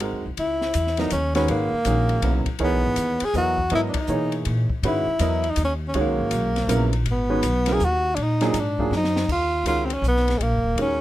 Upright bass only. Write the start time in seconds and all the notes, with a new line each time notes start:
0.13 D#2
0.26 C2
0.38 C#2
0.75 E2
1.12 D#2
1.48 G#1
1.72 muted upright bass stroke
1.85 A#1
2.22 B1
2.46 muted upright bass stroke
2.59 C#2
2.72 B1
2.84 G#1
2.96 D#2
3.21 muted upright bass stroke
3.34 E2
3.71 G#2
3.95 muted upright bass stroke
4.08 B2
4.46 A#2
4.70 muted upright bass stroke
4.83 G#2
5.07 muted upright bass stroke
5.19 E2
5.57 D#2
5.94 C#2
6.07 B1
6.19 G#1
6.31 B1
6.67 A#1
7.05 G#1
7.42 B1
7.80 D#2
8.17 A#2
8.54 G#2
8.91 F#2
9.29 D#2
9.64 C#2
10.02 B1
10.40 A#1
10.52 F#1
10.64 D#1
10.75 D#2